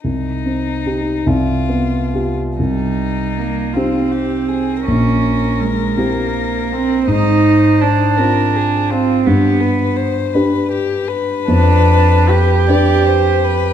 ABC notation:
X:1
M:6/8
L:1/16
Q:3/8=54
K:Cm
V:1 name="Violin"
E6 F4- F z | E6 F2 G2 A2 | B12 | c6 B2 A2 F2 |
G2 =B2 c2 B2 G2 B2- | =B6 d2 c2 B2 |]
V:2 name="Grand piano"
C,,2 C2 [EG]2 C,,2 =B,2 [FG]2 | C,,6 [CEG]6 | B,,,6 [C=EG]6 | A,,6 [CFc]6 |
G,,6 [DG=B]6 | F,,6 [DG=B]6 |]
V:3 name="Cello"
z12 | G,4 B,2 C6 | _D4 A,2 B,4 C2 | E4 D6 C2 |
=B,4 z8 | D4 G8 |]